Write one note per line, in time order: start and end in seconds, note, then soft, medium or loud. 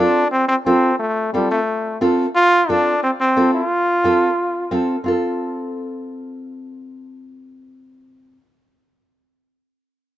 0.00 0.22 C4 medium
0.00 0.31 D4 medium
0.00 0.23 F4 medium
0.00 0.23 A4 medium
0.32 0.48 C4 medium
0.48 0.56 C4 medium
0.66 0.98 C4 medium
0.66 0.90 C4 medium
0.66 0.90 F4 medium
0.66 0.90 A4 medium
0.99 1.31 A3 medium
1.33 1.49 G3 medium
1.33 1.57 C4 medium
1.33 1.58 F4 medium
1.33 1.58 A4 medium
1.51 1.98 A3 medium
2.01 2.25 C4 medium
2.01 2.25 F4 medium
2.01 2.25 A4 medium
2.35 2.71 F4 loud
2.69 2.93 C4 medium
2.69 3.03 D4 medium
2.69 2.93 F4 medium
2.69 2.93 A4 medium
3.03 3.11 C4 medium
3.20 3.52 C4 medium
3.37 3.60 C4 medium
3.37 3.60 F4 medium
3.37 3.61 A4 medium
3.54 4.68 F4 medium
4.04 4.28 C4 medium
4.04 4.28 F4 medium
4.04 4.28 A4 medium
4.71 4.95 C4 medium
4.71 4.96 F4 medium
4.71 4.96 A4 medium
5.04 8.37 C4 medium
5.04 8.39 F4 medium
5.08 8.41 A4 medium